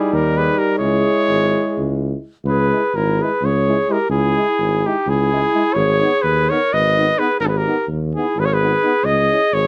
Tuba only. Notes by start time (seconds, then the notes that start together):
0.12 D#2
0.79 C#2
1.28 G#1
1.77 C#2
2.45 C#2
2.94 G#1
3.42 C#2
4.10 C#2
4.58 G#1
5.07 C#2
5.75 G#1
6.23 D#2
6.73 G#1
7.39 G#1
7.88 D#2
8.37 G#1
9.04 C#2
9.53 G#1